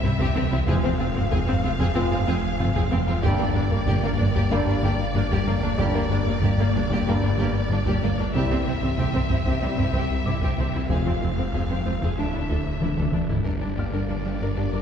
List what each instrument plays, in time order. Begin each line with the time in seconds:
Already playing: detuned saw bass C2, violin section E5
0.03 double bass section C2, cello section C3, analog synth bass C3, synth arpeggio sound G3, viola section C4, violin section E4, taiko low
0.19 analog synth bass C2, cello section C3, synth arpeggio sound C3, viola section C4, violin section G4, taiko
0.34 double bass section C2, analog synth bass C2, cello section C3, synth arpeggio sound E3, viola section C4, violin section C4
0.50 analog synth bass C2, cello section C3, synth arpeggio sound E3, viola section C4, violin section E4
0.67 double bass section F1, detuned saw bass F1, cello section F2, analog synth bass F2, trombone section C3 G#3, synth arpeggio sound F3, viola section C4, french horn section C4 F4, violin section G#4 F5, taiko
0.83 cello section F2, analog synth bass F2, viola section C4, violin section C4, synth arpeggio sound F4
0.99 double bass section F1, cello section F2, analog synth bass F2, viola section C4, violin section F4, synth arpeggio sound F4
1.15 analog synth bass F2, cello section F2, synth arpeggio sound G#3, violin section C4, viola section C4, taiko low
1.30 double bass section F1, cello section F2, analog synth bass F2, synth arpeggio sound F3, viola section C4, violin section G#4, taiko
1.47 cello section F2, analog synth bass F2, synth arpeggio sound G#3, viola section C4, violin section C4, taiko low
1.64 double bass section F1, analog synth bass F2, cello section F2, synth arpeggio sound G#3, viola section C4, violin section F4
1.79 analog synth bass F2, cello section F2, synth arpeggio sound F3, viola section C4, violin section G#4, taiko
1.95 double bass section F1, cello section F2, analog synth bass F2, trombone section C3 G#3, french horn section C4 F4, violin section C4, viola section C4, synth arpeggio sound F4
2.11 cello section F2, analog synth bass F2, viola section C4, violin section F4, synth arpeggio sound F4, taiko low
2.27 double bass section F1, cello section F2, analog synth bass F2, synth arpeggio sound F3, viola section C4, violin section G#4, felt piano G#5
2.44 analog synth bass F2
2.59 double bass section F1, cello section F2, analog synth bass F3, viola section C4, synth arpeggio sound C4, violin section F4, taiko low
2.74 cello section F2, analog synth bass F2, synth arpeggio sound F3, viola section C4, violin section G#4, taiko
2.91 double bass section F1, cello section F2, analog synth bass F2, synth arpeggio sound G#3, violin section C4, viola section C4
3.07 cello section F2, analog synth bass F2, synth arpeggio sound G#3, viola section C4, violin section F4
3.22 detuned saw bass G1, double bass section G1, cello section G2, analog synth bass G2, trombone section D3 G3, synth arpeggio sound G3, french horn section A#3 D4, viola section A#3, violin section G4 D5, felt piano G5, taiko
3.39 analog synth bass G2, cello section G2, violin section A#3, viola section A#3, synth arpeggio sound G4
3.54 double bass section G1, analog synth bass G2, cello section G2, viola section A#3, violin section D4, synth arpeggio sound G4
3.70 cello section G2, analog synth bass G2, violin section A#3, synth arpeggio sound A#3, viola section A#3, taiko low
3.86 double bass section G1, cello section G2, analog synth bass G2, synth arpeggio sound G3, viola section A#3, violin section G4, taiko
4.03 cello section G2, analog synth bass G2, synth arpeggio sound A#3, violin section A#3, viola section A#3, taiko low
4.18 double bass section G1, cello section G2, analog synth bass G2, synth arpeggio sound A#3, viola section A#3, violin section D4, taiko low
4.34 cello section G2, analog synth bass G2, synth arpeggio sound G3, viola section A#3, violin section G4, taiko
4.51 double bass section G1, cello section G2, analog synth bass G2, trombone section D3 G3, violin section A#3, french horn section A#3 D4, viola section A#3, synth arpeggio sound G4, felt piano F5
4.67 cello section G2, analog synth bass G2, viola section A#3, violin section D4, synth arpeggio sound G4, taiko low
4.83 double bass section G1, cello section G2, analog synth bass G2, synth arpeggio sound G3, viola section A#3, violin section G4
4.99 analog synth bass G2
5.14 double bass section G1, cello section G2, analog synth bass G3, viola section A#3, violin section D4, synth arpeggio sound D4, taiko low
5.30 analog synth bass G2, cello section G2, synth arpeggio sound G3, viola section A#3, violin section G4, taiko
5.47 double bass section G1, analog synth bass G2, cello section G2, synth arpeggio sound A#3, violin section A#3, viola section A#3
5.63 analog synth bass G2, cello section G2, synth arpeggio sound A#3, viola section A#3, violin section D4
5.77 double bass section G1, analog synth bass G2, cello section G2, trombone section D3 G3, synth arpeggio sound G3, french horn section A#3 D4, viola section A#3, violin section G4, felt piano D5, taiko
5.94 analog synth bass G2, cello section G2, violin section A#3, viola section A#3, synth arpeggio sound G4
6.10 double bass section G1, analog synth bass G2, cello section G2, viola section A#3, violin section D4, synth arpeggio sound G4
6.26 cello section G2, analog synth bass G2, synth arpeggio sound A#3, viola section A#3, violin section A#3, taiko low
6.42 double bass section G1, cello section G2, analog synth bass G2, synth arpeggio sound G3, viola section A#3, violin section G4, taiko
6.58 analog synth bass G2, cello section G2, synth arpeggio sound A#3, viola section A#3, violin section A#3, taiko low
6.74 double bass section G1, cello section G2, analog synth bass G2, synth arpeggio sound A#3, viola section A#3, violin section D4
6.90 analog synth bass G2, cello section G2, synth arpeggio sound G3, viola section A#3, violin section G4, taiko
7.06 double bass section G1, cello section G2, analog synth bass G2, trombone section D3 G3, french horn section A#3 D4, violin section A#3, viola section A#3, synth arpeggio sound G4
7.22 analog synth bass G2, cello section G2, viola section A#3, violin section D4, synth arpeggio sound G4, taiko low
7.38 double bass section G1, analog synth bass G2, cello section G2, synth arpeggio sound G3, viola section A#3, violin section G4
7.54 analog synth bass G2
7.70 double bass section G1, cello section G2, analog synth bass G3, viola section A#3, synth arpeggio sound D4, violin section D4, taiko low
7.86 analog synth bass G2, cello section G2, synth arpeggio sound G3, viola section A#3, violin section G4, taiko
8.02 double bass section G1, analog synth bass G2, cello section G2, synth arpeggio sound A#3, violin section A#3, viola section A#3
8.18 analog synth bass G2, cello section G2, synth arpeggio sound A#3, viola section A#3, violin section D4
8.34 analog synth bass C2, detuned saw bass C2, double bass section C2, trombone section C3 G3, cello section C3, synth arpeggio sound C3, french horn section C4 E4, viola section C4, violin section G4 E5, taiko
8.50 analog synth bass C2, cello section C3, synth arpeggio sound C4, violin section C4, viola section C4
8.66 double bass section C2, analog synth bass C2, cello section C3, synth arpeggio sound C4, viola section C4, violin section E4
8.81 analog synth bass C2, cello section C3, synth arpeggio sound E3, viola section C4, violin section C4, taiko low
8.97 analog synth bass C2, double bass section C2, synth arpeggio sound C3, cello section C3, viola section C4, violin section G4, felt piano G5, taiko
9.13 analog synth bass C2, cello section C3, synth arpeggio sound E3, viola section C4, violin section C4, taiko low
9.29 double bass section C2, analog synth bass C2, cello section C3, synth arpeggio sound E3, viola section C4, violin section E4, taiko low
9.45 analog synth bass C2, synth arpeggio sound C3, cello section C3, viola section C4, violin section G4, taiko
9.61 analog synth bass C2, double bass section C2, trombone section C3 G3, cello section C3, synth arpeggio sound C4, viola section C4, french horn section C4 E4, violin section C4
9.77 analog synth bass C2, cello section C3, synth arpeggio sound C4, viola section C4, violin section E4, taiko low
9.93 analog synth bass C2, double bass section C2, synth arpeggio sound C3, cello section C3, viola section C4, violin section G4
10.10 analog synth bass C2
10.25 double bass section C2, analog synth bass C3, cello section C3, synth arpeggio sound G3, viola section C4, violin section E4, felt piano D6, taiko low
10.42 analog synth bass C2, synth arpeggio sound C3, cello section C3, viola section C4, violin section G4, taiko
10.58 analog synth bass C2, double bass section C2, cello section C3, synth arpeggio sound E3, viola section C4, violin section C4
10.73 analog synth bass C2, cello section C3, synth arpeggio sound E3, viola section C4, violin section E4
10.89 double bass section F1, detuned saw bass F1, analog synth bass F2, cello section F2, trombone section C3 G#3, synth arpeggio sound F3, viola section C4, french horn section C4 F4, violin section G#4 F5, taiko
11.05 cello section F2, analog synth bass F2, viola section C4, violin section C4, synth arpeggio sound F4
11.21 double bass section F1, cello section F2, analog synth bass F2, viola section C4, violin section F4, synth arpeggio sound F4
11.38 analog synth bass F2, cello section F2, synth arpeggio sound G#3, violin section C4, viola section C4
11.53 double bass section F1, analog synth bass F2, cello section F2, synth arpeggio sound F3, viola section C4, violin section G#4, taiko
11.70 cello section F2, analog synth bass F2, synth arpeggio sound G#3, violin section C4, viola section C4
11.85 double bass section F1, analog synth bass F2, cello section F2, synth arpeggio sound G#3, viola section C4, violin section F4
12.01 cello section F2, analog synth bass F2, synth arpeggio sound F3, viola section C4, violin section G#4, taiko
12.17 detuned saw bass D1, double bass section D2, cello section D2, analog synth bass D2, trombone section A2 A3, violin section D4 E5, viola section D4, french horn section D4 E4, synth arpeggio sound E4
12.33 cello section D2, analog synth bass D2, viola section D4, violin section E4, synth arpeggio sound E4
12.49 double bass section D2, cello section D2, analog synth bass D2, synth arpeggio sound D3, viola section D4, violin section A4
12.67 analog synth bass D2
12.81 double bass section D2, cello section D2, analog synth bass D3, synth arpeggio sound D4, viola section D4, violin section E4, taiko mid
12.96 cello section D2, analog synth bass D2, synth arpeggio sound D3, viola section D4, violin section A4, taiko mid
13.13 double bass section D2, analog synth bass D2, cello section D2, synth arpeggio sound A3, violin section D4, viola section D4, taiko mid
13.29 cello section D2, analog synth bass D2, synth arpeggio sound A3, viola section D4, violin section E4, taiko low
13.44 detuned saw bass G1, double bass section G1, cello section G2, analog synth bass G2, synth arpeggio sound G3, french horn section A#3 D4, viola section D4, violin section A#4 D5, taiko
13.60 cello section G2, analog synth bass G3, violin section D4, viola section D4, synth arpeggio sound D4
13.77 double bass section G1, cello section G2, analog synth bass G2, synth arpeggio sound A#3, viola section D4, violin section G4, felt piano F5 F6
13.93 analog synth bass G2, cello section G2, synth arpeggio sound G3, viola section D4, violin section A#4
14.09 double bass section G1, cello section G2, analog synth bass G3, viola section D4, violin section D4, synth arpeggio sound D4
14.25 cello section G2, analog synth bass G3, viola section D4, synth arpeggio sound D4, violin section G4
14.41 double bass section G1, analog synth bass G2, cello section G2, synth arpeggio sound G3, viola section D4, violin section A#4
14.56 analog synth bass G2, cello section G2, violin section D4, viola section D4, synth arpeggio sound G4
14.71 double bass section G1, analog synth bass G2, cello section G2, synth arpeggio sound G3, viola section D4, violin section A#4, felt piano D6